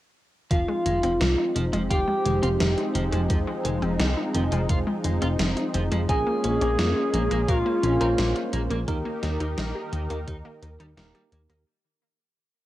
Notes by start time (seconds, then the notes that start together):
0.51 F1 D#3 F3 G#3 C4 D#4 F4 F5, kick, closed hi-hat
0.68 G#3
0.86 F1 D#3 G#3, closed hi-hat
1.03 F1 F3 C4, closed hi-hat
1.21 C2 D#3 F3, snare, closed hi-hat
1.38 D#4
1.55 F1 D#3 F3, closed hi-hat
1.73 F1 F3 G#3, closed hi-hat
1.90 F1 D#3 F4 G4 G5, kick, closed hi-hat
2.08 G#3
2.25 F1 D#3 G#3, closed hi-hat
2.43 F1 C4 F4, closed hi-hat
2.60 F1 D#3 F3, snare, closed hi-hat
2.78 D#4, closed hi-hat
2.95 F1 D#3 F3, closed hi-hat
3.12 F1 F3 G#3, closed hi-hat
3.30 F1 D#3 F3, kick, closed hi-hat
3.47 G#3
3.65 F1 D#3 G#3, closed hi-hat
3.82 F1 F3 C4, closed hi-hat
4.00 C2 D#3 F3, snare, closed hi-hat
4.17 D#4
4.35 F1 D#3 F3, closed hi-hat
4.52 F1 F3 G#3, closed hi-hat
4.69 F1 D#3 F4, kick, closed hi-hat
4.87 G#3
5.04 F1 D#3 G#3, closed hi-hat
5.22 F1 C4 F4, closed hi-hat
5.39 F1 D#3 F3, snare, closed hi-hat
5.57 D#4, closed hi-hat
5.74 F1 D#3 F3, closed hi-hat
5.92 F1 F3 G#3, closed hi-hat
6.09 A#1 F3 G#3 A#3 C#4 F4 G#4 G#5, kick, closed hi-hat
6.27 A#3
6.44 A#1 F3 C#4, closed hi-hat
6.61 A#1 A#3 C#4, closed hi-hat
6.79 F2 F3 A#3, snare, closed hi-hat
6.96 F4
7.14 A#1 F3 A#3, closed hi-hat
7.31 A#1 A#3, closed hi-hat
7.48 A#1 F3 F4 A#4 F5, kick, closed hi-hat
7.66 A#3
7.83 A#1 F3 C#4, closed hi-hat
8.01 A#1 A#3 C#4 F4 A#4 C5, closed hi-hat
8.18 A#1 F3 A#3, snare, closed hi-hat
8.36 F4, closed hi-hat
8.53 A#1 F3 A#3, closed hi-hat
8.71 A#1 A#3, closed hi-hat
8.88 D#2 D#3 A#3 D#4 G4 A#4, kick, closed hi-hat
9.05 A#3
9.23 D#2 D#3 G3, snare, closed hi-hat
9.40 D#2 D#3 D#4, closed hi-hat
9.58 A#1 D#3, snare, closed hi-hat
9.75 G4
9.93 D#2 D#3, closed hi-hat
10.10 D#2 D#3 A#3, closed hi-hat
10.28 D#2 D#3 D#4, kick, closed hi-hat
10.45 A#3
10.62 D#2 D#3, closed hi-hat
10.80 D#2 G3 D#4, closed hi-hat
10.97 D#1 D#3 A#3 D#4 G4 A#4, snare, closed hi-hat
11.15 G3 G4, closed hi-hat
11.32 D#2 D#3 A#3, closed hi-hat
11.50 D#2 D#3 A#3, closed hi-hat